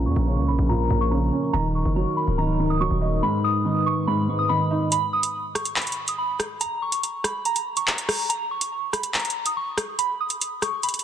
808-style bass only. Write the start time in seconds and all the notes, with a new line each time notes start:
0.06 F2
0.16 A#1
0.37 C#2
0.48 A#1
0.59 A#1
0.90 A#1
1.54 D#1
1.85 F#1
2.28 C#1
2.91 D#1